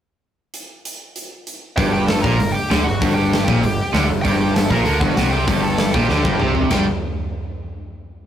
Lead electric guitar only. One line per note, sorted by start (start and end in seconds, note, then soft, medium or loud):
1.77 1.92 G4 medium
1.77 1.92 G5 loud
1.93 2.07 G4 medium
1.93 2.09 G5 medium
2.08 2.23 A4 medium
2.08 2.21 A5 loud
2.22 2.52 A#4 medium
2.22 2.55 A#5 loud
2.52 2.83 G4 medium
2.52 2.82 G5 loud
2.84 3.15 F#4 medium
2.84 3.14 F#5 medium
3.14 3.46 G4 medium
3.14 3.43 G5 loud
3.45 4.06 G4 medium
3.45 4.04 G5 medium
4.22 4.35 G5 medium
4.26 4.39 G4 medium
4.36 4.54 G5 medium
4.41 4.55 G4 medium
4.54 4.70 A4 medium
4.54 4.70 A5 loud
4.70 5.00 A#4 medium
4.70 5.02 A#5 medium
4.99 5.31 F#4 medium
4.99 5.30 F#5 medium
5.31 5.61 G4 medium
5.31 5.63 G5 medium
5.63 5.92 A4 medium
5.63 5.92 A5 loud
5.94 6.52 G4 medium
5.94 6.52 G5 medium
6.71 6.86 G5 medium